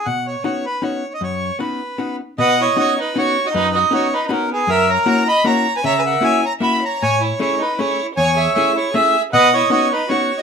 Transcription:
0.06 B2 F#5
0.27 C#5
0.44 B3 C#4 D#4 F#4 C#5
0.66 B4
0.82 B3 C#4 D#4 F#4 C#5
1.14 D#5
1.21 F#2 C#5
1.59 B3 C#4 D#4 F#4 B4
1.98 B3 C#4 D#4 F#4
2.38 B2 B4 D#5 F#5
2.61 E4 C#5
2.76 B3 C#4 D#4 F#4 C#5
2.98 D#4 B4
3.16 B3 C#4 D#4 F#4 C#5
3.45 F#4 D#5
3.53 F#2 D#4 B4
3.75 F#4 D#5
3.91 B3 C#4 D#4 F#4 C#5
4.13 D#4 B4
4.25 D#4 B4
4.29 B3 C#4 D#4 F#4 A#4
4.52 B3 G#4
4.67 F#2 A#4 E5
4.90 C#5 A#5
5.06 A#3 C#4 E4 F#4 C#5 A#5
5.28 D#5 B5
5.44 A#3 C#4 E4 F#4 C#5 A#5
5.76 B4 G#5
5.84 C#3 C#5 E5 A#5
5.98 B4 G#5
6.06 A#4 F#5
6.21 A#3 C#4 E4 F#4 C#5 G#5
6.44 C#5 A#5
6.60 A#3 C#4 E4 F#4 E5 B5
6.83 C#5 A#5
7.00 A2 C#5 G#5
7.21 E4 C#5
7.39 A3 C#4 E4 G#4 C#5
7.60 D#4 B4
7.78 A3 C#4 E4 G#4 C#5
8.15 E2 C#5 G#5
8.37 G#4 E5
8.54 A3 C#4 E4 G#4 E5
8.76 E4 C#5
8.93 A3 C#4 E4 G#4 E5
9.33 B2 B4 D#5 F#5
9.54 E4 C#5
9.70 B3 C#4 D#4 F#4 C#5
9.92 D#4 B4
10.09 B3 C#4 D#4 F#4 C#5
10.38 D#5

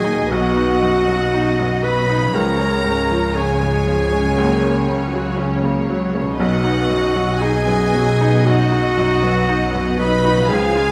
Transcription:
Already playing: D#2 A#2 D#3 F#3 D#4 G#4 A#4 D#5 G#5
0.04 A#3 D#4
0.13 B2
0.17 F#3
0.22 D#4
0.26 B1 F#4 B4 F#5
0.30 B1 B2 F#3 B3
0.57 B3 D#4
0.82 F#2 D#4
1.08 F#3 F#4
1.34 D#4
1.59 F#2 B3
1.84 F#3 B4 B5
2.09 B3 D#4
2.17 C#3
2.22 F3
2.26 C#4
2.31 C#2 C#3 G#4 A#4
2.35 C#2 F3 G#3 C#5 A#5
2.59 G#3 C#4
2.84 G#2 C#4
3.10 F3 F4
3.36 C#4 G#4 G#5
3.61 G#2 G#3
3.87 F3
4.12 G#3 C#4
4.19 C#3
4.24 F#3
4.28 C#4
4.33 A#4
4.37 C#2 F#3 A#3
4.63 A#3 C#4
4.87 C#3 C#4
5.13 F#3 F#4
5.37 C#4
5.63 C#3 A#3
5.89 F#3
6.14 A#3 C#4
6.22 B2
6.26 F#3
6.31 D#4
6.35 B4 D#5
6.39 B1 B2 F#3 B3 F#4 F#5
6.64 B3 D#4
6.90 F#2 D#4
7.15 F#3 F#4
7.41 D#4 G#4 G#5
7.67 F#2 B3
7.94 F#3
8.19 B3 D#4
8.46 F#2 D#4 F#4 F#5
8.72 D#4 F#4
8.97 F#2 D#4
9.22 F#3 B3
9.49 F#3 D#4
9.74 F#2 B3
9.99 F#3 D#4 B4 B5
10.24 D#4 F#4
10.32 C#3
10.37 F3
10.41 F4
10.45 G#4 F5
10.50 C#2 C#3 F3 G#3 G#5
10.76 G#3 F4

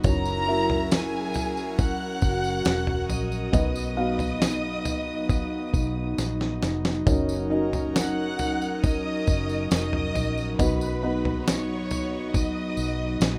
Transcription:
Already playing: F#3
0.04 F#1 C#4 E4 F#4 A#4 C#5 A#5, kick, floor tom, tambourine
0.26 tambourine
0.48 C#4 E4 F#4 A#4 E5
0.70 floor tom
0.91 G#4 G#5, snare, tambourine
1.34 C#2, floor tom, tambourine
1.57 tambourine
1.79 F#4 F#5 F#6, kick, floor tom, tambourine
2.22 F#1, kick, tambourine
2.44 tambourine
2.65 E1, snare, tambourine
2.87 floor tom
3.09 A#1 D#5 D#6, floor tom, tambourine
3.32 tambourine
3.52 B1 B2 F#3 B3 D#4 F#4 B4 D#5, kick, floor tom, tambourine
3.76 tambourine
3.97 B3 D#4 F#4 B4 F5
4.19 floor tom, tambourine
4.42 snare, tambourine
4.85 floor tom, tambourine
5.29 kick, floor tom, tambourine
5.74 B1, kick, tambourine
6.18 A#1, snare, tambourine
6.41 snare
6.62 F1, snare, tambourine
6.85 snare, tambourine
7.06 F#1 C#4 D#4 F#4 A#4 C#5, kick, floor tom, tambourine
7.29 tambourine
7.50 C#4 D#4 F#4 A#4 D#5
7.73 floor tom, tambourine
7.96 F#5 F#6, snare, tambourine
8.39 floor tom, tambourine
8.62 tambourine
8.83 D#5 D#6, kick, floor tom, tambourine
9.27 F#1, kick, tambourine
9.49 tambourine
9.71 F1 D#5 D#6, snare, tambourine
9.93 floor tom
10.15 A#1, floor tom, tambourine
10.37 tambourine
10.59 B1 B2 B3 D#4 F#4 B4 D#5 B5, kick, floor tom, tambourine
10.81 tambourine
11.03 B3 D#4 F#4 B4 D#5
11.25 floor tom
11.47 C#5 C#6, snare, tambourine
11.91 floor tom, tambourine
12.34 D#5 D#6, kick, floor tom, tambourine
12.77 B1, tambourine
13.20 A#1, snare, tambourine

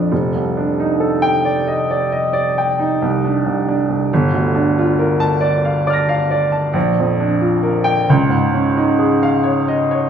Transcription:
Already playing: F2 D4 F4 D5 F5
0.12 F1
0.35 C2
0.57 D4
0.80 D#4
1.00 A4
1.22 G5
1.45 D5
1.67 D#5
1.90 D5
2.12 D#5
2.33 D5
2.58 G5
2.79 D#4
3.02 C2
3.24 D4
3.46 C2
3.68 D4
3.89 C2
4.13 G1
4.32 D2
4.55 D4
4.78 F4
4.99 A#4
5.20 A5
5.41 D5
5.65 F5
5.87 D5 D6 F6
5.93 A#6
6.09 F5
6.31 D5
6.52 A5
6.73 A#1
7.00 F2
7.20 D4
7.41 F4
7.63 A#4
7.84 G5
8.10 C#2
8.29 G#2
8.53 C#4
8.77 D#4
8.99 G#4
9.23 F5
9.44 C#5
9.68 D#5
9.91 C#5

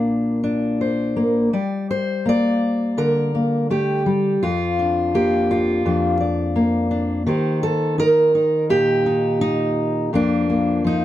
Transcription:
Already playing: A#2 A#3 D4 F4 A#4
0.44 D4
0.81 C5
1.16 A#3
1.53 G3 D5
1.91 C5
2.26 A#3 D5
2.97 D3 A#4
3.35 A#3
3.70 A3 G4
4.06 G3
4.43 F2 F4
4.79 D4
5.14 A#3 G4
5.51 F4
5.85 F2 D4
6.20 D5
6.56 A#3
6.91 D4
7.26 D#3 D#4 G4 C5
7.63 A4
7.98 D#4 A#4
8.35 D#4
8.70 A#2 G4
9.06 D#4
9.41 D#4
10.13 F2 F3 A#3 D4
10.50 A#3
10.84 F3 D#4

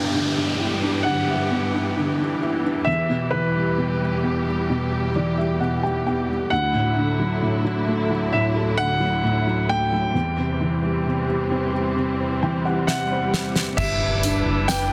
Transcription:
Already playing: G2 D3 E3 B3 D4 G4 G5, downlifter
0.14 D3
0.37 D4
0.60 E4
0.83 D4
1.03 D3 F#5
1.29 E5
1.51 B3
1.74 D4
1.97 D3
2.19 D4
2.42 E4
2.64 D4
2.84 E2 G3 G4 E5
3.09 B2
3.31 E3 B4
3.56 G3
3.78 B2
4.00 G3
4.23 B3
4.46 G3
4.70 B2
4.92 G4
5.16 E3 D5
5.37 G3 E5
5.60 B2 F#5
5.83 G3 G5
6.06 B3 G5
6.29 G3
6.50 D2 D3 F#3 E4 F#5
6.74 A2
6.96 D3
7.19 F#3
7.42 A2
7.64 F#3
7.88 A3
8.10 F#3
8.33 A2 E5
8.56 A4
8.78 D3 F#5
9.00 F#3
9.23 A2
9.47 F#3
9.69 A3 G5
9.92 F#3
10.14 E2 E3 G3 C4, swell
10.38 C3
10.61 E3
10.83 G3
11.05 C3
11.28 G3
11.51 C4
11.73 G3
11.96 C3
12.20 C5
12.43 E3 G5
12.65 G3 F#5
12.87 C3 E5 F#5, snare
13.11 G3 C5
13.33 C4, snare
13.56 G3, snare
13.77 G1 G3 D4 E4 B4 E5, kick, crash, tambourine, impact
14.23 D4, closed hi-hat, tambourine
14.46 F#1
14.68 B4 G5, snare, closed hi-hat, tambourine

